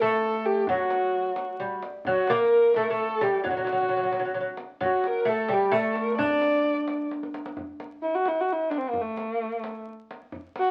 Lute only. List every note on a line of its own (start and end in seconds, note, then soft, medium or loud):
0.02 0.65 A3 medium
0.69 1.59 F#3 medium
1.60 1.81 G3 medium
2.07 2.30 F#3 medium
2.30 2.76 A#3 medium
2.76 2.89 A3 medium
2.90 3.22 A3 medium
3.21 3.43 G3 medium
3.44 3.49 F#3 medium
3.51 3.56 F#3 soft
3.57 3.63 F#3 soft
3.64 3.71 F#3 soft
3.72 3.80 F#3 soft
3.81 3.87 F#3 soft
3.89 3.95 F#3 soft
3.97 4.02 F#3 soft
4.04 4.10 F#3 soft
4.11 4.18 F#3 soft
4.20 4.24 F#3 soft
4.25 4.32 F#3 soft
4.34 4.39 F#3 soft
4.41 4.48 F#3 soft
4.81 5.28 F#3 medium
5.25 5.47 A3 medium
5.49 5.73 G3 medium
5.71 6.20 A3 medium
6.19 7.07 D4 medium